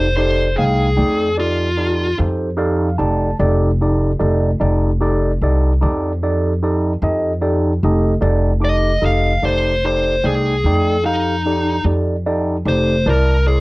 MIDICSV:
0, 0, Header, 1, 4, 480
1, 0, Start_track
1, 0, Tempo, 804290
1, 2024, Time_signature, 12, 3, 24, 8
1, 8118, End_track
2, 0, Start_track
2, 0, Title_t, "Lead electric guitar"
2, 0, Program_c, 0, 29
2, 0, Note_on_c, 0, 72, 72
2, 93, Note_off_c, 0, 72, 0
2, 100, Note_on_c, 0, 72, 69
2, 335, Note_off_c, 0, 72, 0
2, 335, Note_on_c, 0, 68, 58
2, 805, Note_off_c, 0, 68, 0
2, 834, Note_on_c, 0, 65, 62
2, 1294, Note_off_c, 0, 65, 0
2, 5160, Note_on_c, 0, 75, 71
2, 5386, Note_off_c, 0, 75, 0
2, 5404, Note_on_c, 0, 77, 73
2, 5629, Note_off_c, 0, 77, 0
2, 5640, Note_on_c, 0, 72, 80
2, 5867, Note_off_c, 0, 72, 0
2, 5884, Note_on_c, 0, 72, 63
2, 6109, Note_off_c, 0, 72, 0
2, 6123, Note_on_c, 0, 68, 64
2, 6582, Note_off_c, 0, 68, 0
2, 6599, Note_on_c, 0, 63, 59
2, 7060, Note_off_c, 0, 63, 0
2, 7569, Note_on_c, 0, 72, 69
2, 7792, Note_off_c, 0, 72, 0
2, 7817, Note_on_c, 0, 70, 70
2, 8036, Note_off_c, 0, 70, 0
2, 8041, Note_on_c, 0, 68, 74
2, 8118, Note_off_c, 0, 68, 0
2, 8118, End_track
3, 0, Start_track
3, 0, Title_t, "Tine electric piano"
3, 0, Program_c, 1, 4
3, 102, Note_on_c, 1, 63, 46
3, 108, Note_on_c, 1, 67, 41
3, 108, Note_on_c, 1, 69, 45
3, 112, Note_on_c, 1, 74, 53
3, 283, Note_off_c, 1, 63, 0
3, 286, Note_off_c, 1, 67, 0
3, 286, Note_off_c, 1, 69, 0
3, 288, Note_off_c, 1, 74, 0
3, 346, Note_on_c, 1, 79, 38
3, 348, Note_on_c, 1, 77, 52
3, 349, Note_on_c, 1, 63, 46
3, 350, Note_on_c, 1, 57, 38
3, 525, Note_off_c, 1, 79, 0
3, 526, Note_off_c, 1, 63, 0
3, 526, Note_off_c, 1, 77, 0
3, 527, Note_off_c, 1, 57, 0
3, 577, Note_on_c, 1, 63, 45
3, 579, Note_on_c, 1, 79, 41
3, 582, Note_on_c, 1, 57, 45
3, 584, Note_on_c, 1, 74, 47
3, 760, Note_off_c, 1, 63, 0
3, 762, Note_off_c, 1, 79, 0
3, 763, Note_off_c, 1, 57, 0
3, 764, Note_off_c, 1, 74, 0
3, 821, Note_on_c, 1, 67, 41
3, 821, Note_on_c, 1, 74, 47
3, 823, Note_on_c, 1, 63, 41
3, 824, Note_on_c, 1, 69, 42
3, 1002, Note_off_c, 1, 67, 0
3, 1002, Note_off_c, 1, 74, 0
3, 1003, Note_off_c, 1, 63, 0
3, 1004, Note_off_c, 1, 69, 0
3, 1057, Note_on_c, 1, 63, 45
3, 1058, Note_on_c, 1, 67, 38
3, 1058, Note_on_c, 1, 74, 45
3, 1059, Note_on_c, 1, 69, 39
3, 1240, Note_off_c, 1, 63, 0
3, 1241, Note_off_c, 1, 67, 0
3, 1241, Note_off_c, 1, 69, 0
3, 1241, Note_off_c, 1, 74, 0
3, 1299, Note_on_c, 1, 63, 42
3, 1303, Note_on_c, 1, 67, 41
3, 1304, Note_on_c, 1, 69, 41
3, 1308, Note_on_c, 1, 72, 41
3, 1481, Note_off_c, 1, 63, 0
3, 1484, Note_off_c, 1, 67, 0
3, 1484, Note_off_c, 1, 69, 0
3, 1486, Note_off_c, 1, 72, 0
3, 1532, Note_on_c, 1, 63, 60
3, 1534, Note_on_c, 1, 67, 54
3, 1536, Note_on_c, 1, 77, 47
3, 1539, Note_on_c, 1, 69, 51
3, 1541, Note_on_c, 1, 74, 62
3, 1718, Note_off_c, 1, 63, 0
3, 1719, Note_off_c, 1, 67, 0
3, 1721, Note_off_c, 1, 69, 0
3, 1722, Note_off_c, 1, 74, 0
3, 1763, Note_off_c, 1, 77, 0
3, 1779, Note_on_c, 1, 81, 47
3, 1780, Note_on_c, 1, 63, 51
3, 1782, Note_on_c, 1, 67, 54
3, 1783, Note_on_c, 1, 74, 56
3, 1785, Note_on_c, 1, 69, 52
3, 1962, Note_off_c, 1, 63, 0
3, 1963, Note_off_c, 1, 67, 0
3, 1964, Note_off_c, 1, 69, 0
3, 1964, Note_off_c, 1, 74, 0
3, 2005, Note_off_c, 1, 81, 0
3, 2023, Note_on_c, 1, 63, 56
3, 2025, Note_on_c, 1, 67, 54
3, 2027, Note_on_c, 1, 74, 62
3, 2029, Note_on_c, 1, 69, 56
3, 2204, Note_off_c, 1, 63, 0
3, 2205, Note_off_c, 1, 67, 0
3, 2206, Note_off_c, 1, 69, 0
3, 2206, Note_off_c, 1, 74, 0
3, 2272, Note_on_c, 1, 63, 50
3, 2273, Note_on_c, 1, 67, 45
3, 2275, Note_on_c, 1, 69, 43
3, 2279, Note_on_c, 1, 74, 59
3, 2448, Note_off_c, 1, 63, 0
3, 2449, Note_off_c, 1, 67, 0
3, 2450, Note_off_c, 1, 69, 0
3, 2452, Note_off_c, 1, 74, 0
3, 2502, Note_on_c, 1, 63, 56
3, 2502, Note_on_c, 1, 67, 49
3, 2503, Note_on_c, 1, 74, 61
3, 2504, Note_on_c, 1, 69, 53
3, 2683, Note_off_c, 1, 63, 0
3, 2683, Note_off_c, 1, 67, 0
3, 2684, Note_off_c, 1, 69, 0
3, 2684, Note_off_c, 1, 74, 0
3, 2743, Note_on_c, 1, 63, 56
3, 2746, Note_on_c, 1, 69, 48
3, 2749, Note_on_c, 1, 74, 63
3, 2750, Note_on_c, 1, 67, 48
3, 2924, Note_off_c, 1, 63, 0
3, 2926, Note_off_c, 1, 69, 0
3, 2927, Note_off_c, 1, 67, 0
3, 2927, Note_off_c, 1, 74, 0
3, 2987, Note_on_c, 1, 67, 54
3, 2989, Note_on_c, 1, 63, 59
3, 2991, Note_on_c, 1, 69, 51
3, 2995, Note_on_c, 1, 74, 66
3, 3166, Note_off_c, 1, 67, 0
3, 3167, Note_off_c, 1, 63, 0
3, 3168, Note_off_c, 1, 69, 0
3, 3170, Note_off_c, 1, 74, 0
3, 3237, Note_on_c, 1, 69, 51
3, 3240, Note_on_c, 1, 63, 57
3, 3240, Note_on_c, 1, 67, 46
3, 3243, Note_on_c, 1, 74, 61
3, 3411, Note_off_c, 1, 69, 0
3, 3413, Note_off_c, 1, 63, 0
3, 3413, Note_off_c, 1, 67, 0
3, 3414, Note_off_c, 1, 74, 0
3, 3469, Note_on_c, 1, 63, 58
3, 3470, Note_on_c, 1, 67, 49
3, 3475, Note_on_c, 1, 69, 53
3, 3477, Note_on_c, 1, 74, 61
3, 3647, Note_off_c, 1, 63, 0
3, 3648, Note_off_c, 1, 67, 0
3, 3650, Note_off_c, 1, 69, 0
3, 3651, Note_off_c, 1, 74, 0
3, 3717, Note_on_c, 1, 63, 53
3, 3717, Note_on_c, 1, 67, 43
3, 3717, Note_on_c, 1, 69, 46
3, 3720, Note_on_c, 1, 74, 58
3, 3891, Note_off_c, 1, 63, 0
3, 3891, Note_off_c, 1, 67, 0
3, 3891, Note_off_c, 1, 69, 0
3, 3893, Note_off_c, 1, 74, 0
3, 3953, Note_on_c, 1, 67, 47
3, 3955, Note_on_c, 1, 63, 56
3, 3959, Note_on_c, 1, 69, 50
3, 3959, Note_on_c, 1, 74, 58
3, 4129, Note_off_c, 1, 67, 0
3, 4130, Note_off_c, 1, 63, 0
3, 4132, Note_off_c, 1, 69, 0
3, 4132, Note_off_c, 1, 74, 0
3, 4195, Note_on_c, 1, 69, 43
3, 4196, Note_on_c, 1, 63, 48
3, 4198, Note_on_c, 1, 67, 45
3, 4200, Note_on_c, 1, 75, 58
3, 4370, Note_off_c, 1, 69, 0
3, 4371, Note_off_c, 1, 63, 0
3, 4372, Note_off_c, 1, 67, 0
3, 4373, Note_off_c, 1, 75, 0
3, 4426, Note_on_c, 1, 63, 58
3, 4430, Note_on_c, 1, 74, 61
3, 4432, Note_on_c, 1, 69, 50
3, 4433, Note_on_c, 1, 67, 57
3, 4606, Note_off_c, 1, 63, 0
3, 4608, Note_off_c, 1, 74, 0
3, 4609, Note_off_c, 1, 69, 0
3, 4610, Note_off_c, 1, 67, 0
3, 4681, Note_on_c, 1, 63, 56
3, 4682, Note_on_c, 1, 67, 51
3, 4683, Note_on_c, 1, 75, 58
3, 4684, Note_on_c, 1, 69, 49
3, 4854, Note_off_c, 1, 63, 0
3, 4854, Note_off_c, 1, 67, 0
3, 4855, Note_off_c, 1, 69, 0
3, 4855, Note_off_c, 1, 75, 0
3, 4899, Note_on_c, 1, 63, 58
3, 4901, Note_on_c, 1, 67, 52
3, 4906, Note_on_c, 1, 74, 65
3, 4907, Note_on_c, 1, 69, 57
3, 5083, Note_off_c, 1, 63, 0
3, 5084, Note_off_c, 1, 67, 0
3, 5086, Note_off_c, 1, 74, 0
3, 5087, Note_off_c, 1, 69, 0
3, 5134, Note_on_c, 1, 69, 38
3, 5136, Note_on_c, 1, 63, 40
3, 5139, Note_on_c, 1, 67, 34
3, 5142, Note_on_c, 1, 86, 44
3, 5321, Note_off_c, 1, 69, 0
3, 5322, Note_off_c, 1, 63, 0
3, 5323, Note_off_c, 1, 67, 0
3, 5325, Note_off_c, 1, 86, 0
3, 5380, Note_on_c, 1, 69, 44
3, 5381, Note_on_c, 1, 63, 46
3, 5384, Note_on_c, 1, 67, 45
3, 5386, Note_on_c, 1, 75, 52
3, 5564, Note_off_c, 1, 63, 0
3, 5564, Note_off_c, 1, 69, 0
3, 5566, Note_off_c, 1, 67, 0
3, 5567, Note_off_c, 1, 75, 0
3, 5625, Note_on_c, 1, 63, 46
3, 5625, Note_on_c, 1, 69, 45
3, 5628, Note_on_c, 1, 67, 40
3, 5630, Note_on_c, 1, 74, 52
3, 5806, Note_off_c, 1, 63, 0
3, 5807, Note_off_c, 1, 69, 0
3, 5808, Note_off_c, 1, 67, 0
3, 5809, Note_off_c, 1, 74, 0
3, 5875, Note_on_c, 1, 63, 45
3, 5878, Note_on_c, 1, 67, 42
3, 5883, Note_on_c, 1, 69, 43
3, 5883, Note_on_c, 1, 74, 49
3, 6052, Note_off_c, 1, 63, 0
3, 6053, Note_off_c, 1, 67, 0
3, 6055, Note_off_c, 1, 69, 0
3, 6055, Note_off_c, 1, 74, 0
3, 6109, Note_on_c, 1, 63, 44
3, 6111, Note_on_c, 1, 79, 44
3, 6112, Note_on_c, 1, 57, 41
3, 6114, Note_on_c, 1, 74, 47
3, 6289, Note_off_c, 1, 63, 0
3, 6289, Note_off_c, 1, 79, 0
3, 6290, Note_off_c, 1, 57, 0
3, 6291, Note_off_c, 1, 74, 0
3, 6360, Note_on_c, 1, 63, 46
3, 6361, Note_on_c, 1, 79, 40
3, 6364, Note_on_c, 1, 74, 50
3, 6365, Note_on_c, 1, 57, 39
3, 6534, Note_off_c, 1, 63, 0
3, 6535, Note_off_c, 1, 79, 0
3, 6536, Note_off_c, 1, 74, 0
3, 6537, Note_off_c, 1, 57, 0
3, 6586, Note_on_c, 1, 63, 42
3, 6588, Note_on_c, 1, 67, 41
3, 6594, Note_on_c, 1, 69, 35
3, 6598, Note_on_c, 1, 77, 49
3, 6767, Note_off_c, 1, 63, 0
3, 6768, Note_off_c, 1, 67, 0
3, 6771, Note_off_c, 1, 69, 0
3, 6773, Note_off_c, 1, 77, 0
3, 6838, Note_on_c, 1, 63, 45
3, 6841, Note_on_c, 1, 69, 43
3, 6842, Note_on_c, 1, 67, 40
3, 6842, Note_on_c, 1, 74, 44
3, 7013, Note_off_c, 1, 63, 0
3, 7015, Note_off_c, 1, 67, 0
3, 7015, Note_off_c, 1, 69, 0
3, 7015, Note_off_c, 1, 74, 0
3, 7069, Note_on_c, 1, 67, 36
3, 7073, Note_on_c, 1, 63, 40
3, 7073, Note_on_c, 1, 69, 34
3, 7076, Note_on_c, 1, 74, 46
3, 7249, Note_off_c, 1, 67, 0
3, 7251, Note_off_c, 1, 63, 0
3, 7251, Note_off_c, 1, 69, 0
3, 7252, Note_off_c, 1, 74, 0
3, 7317, Note_on_c, 1, 69, 53
3, 7318, Note_on_c, 1, 74, 60
3, 7320, Note_on_c, 1, 63, 57
3, 7320, Note_on_c, 1, 67, 50
3, 7493, Note_off_c, 1, 69, 0
3, 7493, Note_off_c, 1, 74, 0
3, 7494, Note_off_c, 1, 63, 0
3, 7494, Note_off_c, 1, 67, 0
3, 7552, Note_on_c, 1, 63, 41
3, 7554, Note_on_c, 1, 69, 37
3, 7557, Note_on_c, 1, 74, 48
3, 7558, Note_on_c, 1, 67, 41
3, 7731, Note_off_c, 1, 63, 0
3, 7732, Note_off_c, 1, 69, 0
3, 7733, Note_off_c, 1, 67, 0
3, 7733, Note_off_c, 1, 74, 0
3, 7793, Note_on_c, 1, 64, 47
3, 7794, Note_on_c, 1, 81, 44
3, 7800, Note_on_c, 1, 70, 45
3, 7800, Note_on_c, 1, 74, 58
3, 7971, Note_off_c, 1, 64, 0
3, 7972, Note_off_c, 1, 81, 0
3, 7974, Note_off_c, 1, 70, 0
3, 7974, Note_off_c, 1, 74, 0
3, 8037, Note_on_c, 1, 72, 36
3, 8037, Note_on_c, 1, 74, 46
3, 8039, Note_on_c, 1, 64, 40
3, 8042, Note_on_c, 1, 70, 40
3, 8118, Note_off_c, 1, 64, 0
3, 8118, Note_off_c, 1, 70, 0
3, 8118, Note_off_c, 1, 72, 0
3, 8118, Note_off_c, 1, 74, 0
3, 8118, End_track
4, 0, Start_track
4, 0, Title_t, "Upright bass"
4, 0, Program_c, 2, 32
4, 0, Note_on_c, 2, 29, 67
4, 321, Note_off_c, 2, 29, 0
4, 353, Note_on_c, 2, 36, 73
4, 590, Note_on_c, 2, 41, 70
4, 599, Note_off_c, 2, 36, 0
4, 1283, Note_off_c, 2, 41, 0
4, 1307, Note_on_c, 2, 41, 73
4, 1762, Note_off_c, 2, 41, 0
4, 1784, Note_on_c, 2, 29, 65
4, 2005, Note_off_c, 2, 29, 0
4, 2025, Note_on_c, 2, 29, 73
4, 2481, Note_off_c, 2, 29, 0
4, 2509, Note_on_c, 2, 29, 68
4, 2728, Note_off_c, 2, 29, 0
4, 2750, Note_on_c, 2, 29, 69
4, 3204, Note_off_c, 2, 29, 0
4, 3231, Note_on_c, 2, 36, 67
4, 3476, Note_on_c, 2, 41, 73
4, 3485, Note_off_c, 2, 36, 0
4, 4167, Note_off_c, 2, 41, 0
4, 4190, Note_on_c, 2, 41, 75
4, 4644, Note_off_c, 2, 41, 0
4, 4675, Note_on_c, 2, 29, 73
4, 4892, Note_off_c, 2, 29, 0
4, 4906, Note_on_c, 2, 29, 78
4, 5363, Note_off_c, 2, 29, 0
4, 5384, Note_on_c, 2, 29, 72
4, 5606, Note_off_c, 2, 29, 0
4, 5627, Note_on_c, 2, 29, 62
4, 6084, Note_off_c, 2, 29, 0
4, 6110, Note_on_c, 2, 36, 67
4, 6349, Note_on_c, 2, 41, 73
4, 6358, Note_off_c, 2, 36, 0
4, 7045, Note_off_c, 2, 41, 0
4, 7067, Note_on_c, 2, 41, 70
4, 7524, Note_off_c, 2, 41, 0
4, 7551, Note_on_c, 2, 29, 76
4, 7771, Note_off_c, 2, 29, 0
4, 7793, Note_on_c, 2, 36, 82
4, 8118, Note_off_c, 2, 36, 0
4, 8118, End_track
0, 0, End_of_file